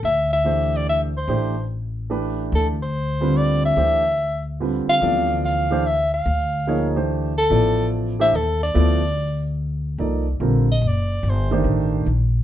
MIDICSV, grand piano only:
0, 0, Header, 1, 2, 480
1, 0, Start_track
1, 0, Tempo, 414938
1, 45, Time_signature, 3, 2, 24, 8
1, 14384, End_track
2, 0, Start_track
2, 0, Title_t, "Grand piano"
2, 0, Program_c, 0, 0
2, 515, Note_on_c, 0, 52, 58
2, 522, Note_on_c, 0, 57, 48
2, 524, Note_on_c, 0, 62, 46
2, 525, Note_on_c, 0, 67, 50
2, 530, Note_on_c, 0, 72, 61
2, 1256, Note_off_c, 0, 52, 0
2, 1259, Note_off_c, 0, 57, 0
2, 1260, Note_off_c, 0, 62, 0
2, 1261, Note_off_c, 0, 67, 0
2, 1263, Note_off_c, 0, 72, 0
2, 1486, Note_on_c, 0, 52, 57
2, 1489, Note_on_c, 0, 57, 61
2, 1489, Note_on_c, 0, 62, 60
2, 1494, Note_on_c, 0, 67, 59
2, 1496, Note_on_c, 0, 72, 68
2, 1773, Note_off_c, 0, 52, 0
2, 1775, Note_off_c, 0, 57, 0
2, 1775, Note_off_c, 0, 62, 0
2, 1777, Note_off_c, 0, 67, 0
2, 1778, Note_off_c, 0, 72, 0
2, 2426, Note_on_c, 0, 52, 63
2, 2430, Note_on_c, 0, 62, 58
2, 2431, Note_on_c, 0, 57, 52
2, 2436, Note_on_c, 0, 67, 54
2, 2440, Note_on_c, 0, 71, 70
2, 3171, Note_off_c, 0, 52, 0
2, 3173, Note_off_c, 0, 62, 0
2, 3174, Note_off_c, 0, 57, 0
2, 3176, Note_off_c, 0, 67, 0
2, 3178, Note_off_c, 0, 71, 0
2, 3709, Note_on_c, 0, 50, 59
2, 3716, Note_on_c, 0, 55, 54
2, 3718, Note_on_c, 0, 60, 56
2, 3721, Note_on_c, 0, 65, 55
2, 3723, Note_on_c, 0, 71, 72
2, 4325, Note_off_c, 0, 50, 0
2, 4328, Note_off_c, 0, 55, 0
2, 4329, Note_off_c, 0, 60, 0
2, 4331, Note_off_c, 0, 65, 0
2, 4332, Note_off_c, 0, 71, 0
2, 4360, Note_on_c, 0, 52, 61
2, 4360, Note_on_c, 0, 57, 54
2, 4360, Note_on_c, 0, 62, 49
2, 4365, Note_on_c, 0, 67, 57
2, 4372, Note_on_c, 0, 72, 65
2, 4650, Note_off_c, 0, 52, 0
2, 4650, Note_off_c, 0, 57, 0
2, 4650, Note_off_c, 0, 62, 0
2, 4652, Note_off_c, 0, 67, 0
2, 4656, Note_off_c, 0, 72, 0
2, 5326, Note_on_c, 0, 50, 62
2, 5326, Note_on_c, 0, 55, 52
2, 5333, Note_on_c, 0, 60, 52
2, 5335, Note_on_c, 0, 65, 53
2, 5337, Note_on_c, 0, 71, 62
2, 5801, Note_on_c, 0, 53, 64
2, 5807, Note_on_c, 0, 52, 59
2, 5811, Note_on_c, 0, 59, 58
2, 5812, Note_on_c, 0, 69, 54
2, 5816, Note_on_c, 0, 74, 68
2, 6060, Note_off_c, 0, 50, 0
2, 6060, Note_off_c, 0, 55, 0
2, 6064, Note_off_c, 0, 60, 0
2, 6065, Note_off_c, 0, 65, 0
2, 6066, Note_off_c, 0, 71, 0
2, 6538, Note_off_c, 0, 53, 0
2, 6541, Note_off_c, 0, 52, 0
2, 6543, Note_off_c, 0, 59, 0
2, 6544, Note_off_c, 0, 69, 0
2, 6546, Note_off_c, 0, 74, 0
2, 6598, Note_on_c, 0, 52, 73
2, 6605, Note_on_c, 0, 57, 60
2, 6609, Note_on_c, 0, 62, 64
2, 6612, Note_on_c, 0, 67, 59
2, 6618, Note_on_c, 0, 72, 73
2, 6745, Note_off_c, 0, 52, 0
2, 6748, Note_off_c, 0, 57, 0
2, 6750, Note_off_c, 0, 62, 0
2, 6752, Note_off_c, 0, 67, 0
2, 6755, Note_off_c, 0, 72, 0
2, 7719, Note_on_c, 0, 58, 62
2, 7720, Note_on_c, 0, 53, 62
2, 7726, Note_on_c, 0, 63, 63
2, 7726, Note_on_c, 0, 68, 57
2, 7735, Note_on_c, 0, 73, 72
2, 8009, Note_off_c, 0, 53, 0
2, 8009, Note_off_c, 0, 58, 0
2, 8012, Note_off_c, 0, 63, 0
2, 8012, Note_off_c, 0, 68, 0
2, 8017, Note_off_c, 0, 73, 0
2, 8043, Note_on_c, 0, 52, 59
2, 8050, Note_on_c, 0, 57, 60
2, 8051, Note_on_c, 0, 62, 51
2, 8055, Note_on_c, 0, 67, 55
2, 8062, Note_on_c, 0, 72, 69
2, 8459, Note_off_c, 0, 52, 0
2, 8462, Note_off_c, 0, 57, 0
2, 8463, Note_off_c, 0, 62, 0
2, 8465, Note_off_c, 0, 67, 0
2, 8468, Note_off_c, 0, 72, 0
2, 8680, Note_on_c, 0, 59, 58
2, 8681, Note_on_c, 0, 53, 68
2, 8688, Note_on_c, 0, 64, 58
2, 8691, Note_on_c, 0, 69, 58
2, 8694, Note_on_c, 0, 74, 73
2, 9417, Note_off_c, 0, 53, 0
2, 9417, Note_off_c, 0, 59, 0
2, 9421, Note_off_c, 0, 64, 0
2, 9422, Note_off_c, 0, 69, 0
2, 9424, Note_off_c, 0, 74, 0
2, 9478, Note_on_c, 0, 52, 71
2, 9481, Note_on_c, 0, 62, 57
2, 9484, Note_on_c, 0, 67, 60
2, 9485, Note_on_c, 0, 57, 58
2, 9493, Note_on_c, 0, 72, 78
2, 9624, Note_off_c, 0, 52, 0
2, 9626, Note_off_c, 0, 62, 0
2, 9627, Note_off_c, 0, 67, 0
2, 9628, Note_off_c, 0, 57, 0
2, 9632, Note_off_c, 0, 72, 0
2, 10114, Note_on_c, 0, 53, 75
2, 10116, Note_on_c, 0, 59, 67
2, 10117, Note_on_c, 0, 64, 67
2, 10120, Note_on_c, 0, 69, 65
2, 10126, Note_on_c, 0, 74, 82
2, 10406, Note_off_c, 0, 53, 0
2, 10407, Note_off_c, 0, 59, 0
2, 10407, Note_off_c, 0, 64, 0
2, 10409, Note_off_c, 0, 69, 0
2, 10412, Note_off_c, 0, 74, 0
2, 11557, Note_on_c, 0, 53, 52
2, 11559, Note_on_c, 0, 58, 53
2, 11561, Note_on_c, 0, 63, 47
2, 11568, Note_on_c, 0, 74, 66
2, 11569, Note_on_c, 0, 69, 50
2, 11847, Note_off_c, 0, 53, 0
2, 11848, Note_off_c, 0, 58, 0
2, 11849, Note_off_c, 0, 63, 0
2, 11853, Note_off_c, 0, 69, 0
2, 11853, Note_off_c, 0, 74, 0
2, 12034, Note_on_c, 0, 50, 62
2, 12042, Note_on_c, 0, 60, 57
2, 12043, Note_on_c, 0, 55, 54
2, 12047, Note_on_c, 0, 65, 58
2, 12049, Note_on_c, 0, 70, 64
2, 12326, Note_off_c, 0, 50, 0
2, 12330, Note_off_c, 0, 55, 0
2, 12330, Note_off_c, 0, 60, 0
2, 12332, Note_off_c, 0, 65, 0
2, 12333, Note_off_c, 0, 70, 0
2, 13316, Note_on_c, 0, 51, 70
2, 13316, Note_on_c, 0, 57, 64
2, 13326, Note_on_c, 0, 62, 68
2, 13330, Note_on_c, 0, 67, 58
2, 13337, Note_on_c, 0, 72, 77
2, 13927, Note_off_c, 0, 51, 0
2, 13927, Note_off_c, 0, 57, 0
2, 13932, Note_off_c, 0, 62, 0
2, 13934, Note_off_c, 0, 67, 0
2, 13938, Note_off_c, 0, 72, 0
2, 14384, End_track
0, 0, End_of_file